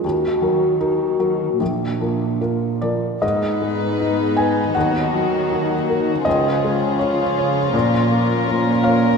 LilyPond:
<<
  \new Staff \with { instrumentName = "Violin section" } { \time 4/4 \key ees \minor \tempo 4 = 80 << { r1 | ces''2 ges'2 | aes'2 bes'2 | } \\ { r1 | ees'1 | f'1 | } >> }
  \new Staff \with { instrumentName = "Alto flute" } { \time 4/4 \key ees \minor ges'4 ges'4 d'4. r8 | r1 | r1 | }
  \new Staff \with { instrumentName = "Felt piano" } { \time 4/4 \key ees \minor << { r2. r8 d''8 | ees''4. aes''8 ges''2 | ees''4 des''2 r8 f''8 | } \\ { ees,8 <ges bes'>8 <ees' bes'>8 <ges bes'>8 bes,,8 <f bes'>8 <f' bes'>8 <f bes'>8 | aes,8 aes8 ees'8 ces''8 ees,8 ges8 ees'8 bes'8 | des,8 aes8 f'8 des''8 bes,8 bes8 f'8 des''8 | } >> }
  \new Staff \with { instrumentName = "Viola section" } { \time 4/4 \key ees \minor << { r1 | ces'2. bes4 | des'1 | } \\ { r1 | aes2 ges2 | f1 | } >> }
  \new Staff \with { instrumentName = "Cello section" } { \clef bass \time 4/4 \key ees \minor ees2 bes,4.~ bes,16 r16 | aes,2 ees2 | des2 bes,2 | }
>>